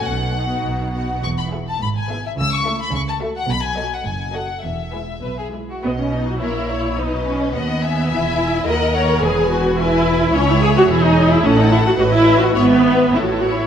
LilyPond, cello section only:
\new Staff \with { instrumentName = "Cello section" } { \clef bass \time 2/4 \key e \major \tempo 4 = 106 b,4 b,4 | e,4 gis,4 | cis4 cis4 | b,4 fis,4 |
e,4 b,4 | \key e \lydian b,4 ais,4 | b,4 dis,4 | e,4 dis,4 |
e,2 | \key cis \minor cis,4 e,4 | a,4 a,4 | gis,4 a,4 | }